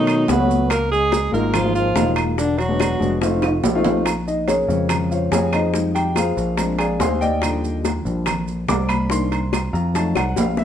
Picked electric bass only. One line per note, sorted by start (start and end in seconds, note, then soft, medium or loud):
0.00 0.25 B2 medium
0.29 1.27 C#2 medium
1.33 1.92 G#1 loud
1.95 2.95 E1 medium
3.01 3.60 F1 medium
3.64 4.63 A#1 medium
4.69 5.28 F2 medium
5.32 6.31 F2 medium
6.37 6.96 A#1 loud
7.00 7.99 D#2 medium
8.05 8.65 A#1 medium
8.69 9.68 C2 medium
9.73 10.13 F2 medium
10.16 10.35 C2 medium
10.37 10.64 A#1 medium